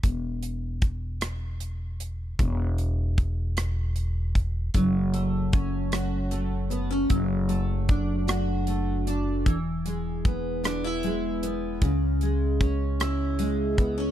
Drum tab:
HH |xxxxxx|xxxxxx|xxxxxx|xxxxxx|
SD |---r--|---r--|---r--|---r--|
BD |o-o---|o-o--o|o-o---|o-o---|

HH |xxxxxx|xxxxxx|
SD |---r--|---r--|
BD |o-o---|o-o--o|